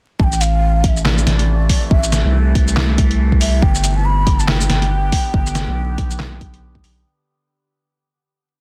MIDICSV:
0, 0, Header, 1, 5, 480
1, 0, Start_track
1, 0, Key_signature, 0, "minor"
1, 0, Tempo, 428571
1, 220, Time_signature, 4, 2, 24, 8
1, 9642, End_track
2, 0, Start_track
2, 0, Title_t, "Ney"
2, 0, Program_c, 0, 77
2, 217, Note_on_c, 0, 81, 112
2, 265, Note_on_c, 0, 79, 122
2, 276, Note_off_c, 0, 81, 0
2, 460, Note_on_c, 0, 77, 111
2, 476, Note_off_c, 0, 79, 0
2, 939, Note_off_c, 0, 77, 0
2, 939, Note_on_c, 0, 77, 90
2, 984, Note_on_c, 0, 76, 98
2, 995, Note_off_c, 0, 77, 0
2, 1171, Note_off_c, 0, 76, 0
2, 1177, Note_on_c, 0, 74, 103
2, 2138, Note_on_c, 0, 76, 93
2, 2155, Note_off_c, 0, 74, 0
2, 2619, Note_off_c, 0, 76, 0
2, 3819, Note_on_c, 0, 76, 100
2, 4060, Note_on_c, 0, 79, 110
2, 4077, Note_off_c, 0, 76, 0
2, 4441, Note_on_c, 0, 81, 103
2, 4458, Note_off_c, 0, 79, 0
2, 4540, Note_on_c, 0, 83, 112
2, 4557, Note_off_c, 0, 81, 0
2, 4922, Note_on_c, 0, 81, 107
2, 4938, Note_off_c, 0, 83, 0
2, 5021, Note_on_c, 0, 79, 110
2, 5038, Note_off_c, 0, 81, 0
2, 7420, Note_off_c, 0, 79, 0
2, 9642, End_track
3, 0, Start_track
3, 0, Title_t, "Synth drone"
3, 0, Program_c, 1, 95
3, 218, Note_on_c, 1, 48, 80
3, 219, Note_on_c, 1, 52, 90
3, 219, Note_on_c, 1, 57, 73
3, 4020, Note_off_c, 1, 48, 0
3, 4021, Note_off_c, 1, 52, 0
3, 4021, Note_off_c, 1, 57, 0
3, 4059, Note_on_c, 1, 59, 75
3, 4059, Note_on_c, 1, 67, 90
3, 4060, Note_on_c, 1, 50, 82
3, 7861, Note_off_c, 1, 59, 0
3, 7861, Note_off_c, 1, 67, 0
3, 7862, Note_off_c, 1, 50, 0
3, 9642, End_track
4, 0, Start_track
4, 0, Title_t, "Sub bass"
4, 0, Program_c, 2, 38
4, 220, Note_on_c, 2, 33, 99
4, 1407, Note_off_c, 2, 33, 0
4, 1419, Note_on_c, 2, 33, 84
4, 1887, Note_off_c, 2, 33, 0
4, 2140, Note_on_c, 2, 33, 98
4, 2503, Note_off_c, 2, 33, 0
4, 2521, Note_on_c, 2, 36, 97
4, 4047, Note_off_c, 2, 36, 0
4, 4060, Note_on_c, 2, 31, 99
4, 5247, Note_off_c, 2, 31, 0
4, 5260, Note_on_c, 2, 31, 82
4, 5727, Note_off_c, 2, 31, 0
4, 5979, Note_on_c, 2, 31, 102
4, 6342, Note_off_c, 2, 31, 0
4, 6360, Note_on_c, 2, 35, 104
4, 7173, Note_off_c, 2, 35, 0
4, 7179, Note_on_c, 2, 35, 104
4, 7647, Note_off_c, 2, 35, 0
4, 7661, Note_on_c, 2, 35, 94
4, 7884, Note_off_c, 2, 35, 0
4, 9642, End_track
5, 0, Start_track
5, 0, Title_t, "Drums"
5, 220, Note_on_c, 9, 36, 123
5, 332, Note_off_c, 9, 36, 0
5, 360, Note_on_c, 9, 82, 61
5, 459, Note_off_c, 9, 82, 0
5, 459, Note_on_c, 9, 42, 84
5, 459, Note_on_c, 9, 82, 79
5, 571, Note_off_c, 9, 42, 0
5, 571, Note_off_c, 9, 82, 0
5, 939, Note_on_c, 9, 36, 106
5, 939, Note_on_c, 9, 42, 82
5, 1051, Note_off_c, 9, 36, 0
5, 1051, Note_off_c, 9, 42, 0
5, 1080, Note_on_c, 9, 82, 49
5, 1179, Note_on_c, 9, 38, 115
5, 1179, Note_on_c, 9, 39, 93
5, 1192, Note_off_c, 9, 82, 0
5, 1291, Note_off_c, 9, 38, 0
5, 1291, Note_off_c, 9, 39, 0
5, 1320, Note_on_c, 9, 82, 79
5, 1419, Note_on_c, 9, 38, 63
5, 1419, Note_on_c, 9, 42, 81
5, 1432, Note_off_c, 9, 82, 0
5, 1531, Note_off_c, 9, 38, 0
5, 1531, Note_off_c, 9, 42, 0
5, 1560, Note_on_c, 9, 42, 40
5, 1672, Note_off_c, 9, 42, 0
5, 1898, Note_on_c, 9, 46, 92
5, 1899, Note_on_c, 9, 36, 59
5, 2010, Note_off_c, 9, 46, 0
5, 2011, Note_off_c, 9, 36, 0
5, 2139, Note_on_c, 9, 36, 127
5, 2251, Note_off_c, 9, 36, 0
5, 2279, Note_on_c, 9, 82, 65
5, 2378, Note_off_c, 9, 82, 0
5, 2378, Note_on_c, 9, 38, 65
5, 2378, Note_on_c, 9, 42, 78
5, 2378, Note_on_c, 9, 82, 80
5, 2490, Note_off_c, 9, 38, 0
5, 2490, Note_off_c, 9, 42, 0
5, 2490, Note_off_c, 9, 82, 0
5, 2859, Note_on_c, 9, 36, 111
5, 2859, Note_on_c, 9, 42, 81
5, 2971, Note_off_c, 9, 36, 0
5, 2971, Note_off_c, 9, 42, 0
5, 2999, Note_on_c, 9, 82, 52
5, 3099, Note_on_c, 9, 38, 121
5, 3099, Note_on_c, 9, 39, 92
5, 3111, Note_off_c, 9, 82, 0
5, 3211, Note_off_c, 9, 38, 0
5, 3211, Note_off_c, 9, 39, 0
5, 3338, Note_on_c, 9, 42, 78
5, 3339, Note_on_c, 9, 36, 114
5, 3450, Note_off_c, 9, 42, 0
5, 3451, Note_off_c, 9, 36, 0
5, 3480, Note_on_c, 9, 42, 36
5, 3592, Note_off_c, 9, 42, 0
5, 3721, Note_on_c, 9, 36, 63
5, 3818, Note_on_c, 9, 46, 90
5, 3818, Note_on_c, 9, 82, 51
5, 3833, Note_off_c, 9, 36, 0
5, 3930, Note_off_c, 9, 46, 0
5, 3930, Note_off_c, 9, 82, 0
5, 4060, Note_on_c, 9, 36, 127
5, 4172, Note_off_c, 9, 36, 0
5, 4199, Note_on_c, 9, 82, 66
5, 4298, Note_off_c, 9, 82, 0
5, 4298, Note_on_c, 9, 42, 82
5, 4298, Note_on_c, 9, 82, 84
5, 4410, Note_off_c, 9, 42, 0
5, 4410, Note_off_c, 9, 82, 0
5, 4779, Note_on_c, 9, 36, 111
5, 4779, Note_on_c, 9, 42, 78
5, 4891, Note_off_c, 9, 36, 0
5, 4891, Note_off_c, 9, 42, 0
5, 4920, Note_on_c, 9, 82, 55
5, 5019, Note_on_c, 9, 38, 127
5, 5019, Note_on_c, 9, 39, 93
5, 5032, Note_off_c, 9, 82, 0
5, 5131, Note_off_c, 9, 38, 0
5, 5131, Note_off_c, 9, 39, 0
5, 5160, Note_on_c, 9, 82, 85
5, 5259, Note_on_c, 9, 38, 66
5, 5259, Note_on_c, 9, 42, 78
5, 5272, Note_off_c, 9, 82, 0
5, 5371, Note_off_c, 9, 38, 0
5, 5371, Note_off_c, 9, 42, 0
5, 5400, Note_on_c, 9, 42, 36
5, 5512, Note_off_c, 9, 42, 0
5, 5738, Note_on_c, 9, 46, 86
5, 5740, Note_on_c, 9, 36, 64
5, 5850, Note_off_c, 9, 46, 0
5, 5852, Note_off_c, 9, 36, 0
5, 5979, Note_on_c, 9, 36, 127
5, 6091, Note_off_c, 9, 36, 0
5, 6119, Note_on_c, 9, 82, 70
5, 6218, Note_off_c, 9, 82, 0
5, 6218, Note_on_c, 9, 38, 64
5, 6218, Note_on_c, 9, 42, 74
5, 6218, Note_on_c, 9, 82, 81
5, 6330, Note_off_c, 9, 38, 0
5, 6330, Note_off_c, 9, 42, 0
5, 6330, Note_off_c, 9, 82, 0
5, 6699, Note_on_c, 9, 42, 76
5, 6700, Note_on_c, 9, 36, 119
5, 6811, Note_off_c, 9, 42, 0
5, 6812, Note_off_c, 9, 36, 0
5, 6840, Note_on_c, 9, 82, 58
5, 6939, Note_on_c, 9, 38, 124
5, 6939, Note_on_c, 9, 39, 88
5, 6952, Note_off_c, 9, 82, 0
5, 7051, Note_off_c, 9, 38, 0
5, 7051, Note_off_c, 9, 39, 0
5, 7179, Note_on_c, 9, 42, 78
5, 7180, Note_on_c, 9, 36, 120
5, 7291, Note_off_c, 9, 42, 0
5, 7292, Note_off_c, 9, 36, 0
5, 7321, Note_on_c, 9, 42, 34
5, 7433, Note_off_c, 9, 42, 0
5, 7561, Note_on_c, 9, 36, 64
5, 7660, Note_on_c, 9, 46, 92
5, 7660, Note_on_c, 9, 82, 55
5, 7673, Note_off_c, 9, 36, 0
5, 7772, Note_off_c, 9, 46, 0
5, 7772, Note_off_c, 9, 82, 0
5, 9642, End_track
0, 0, End_of_file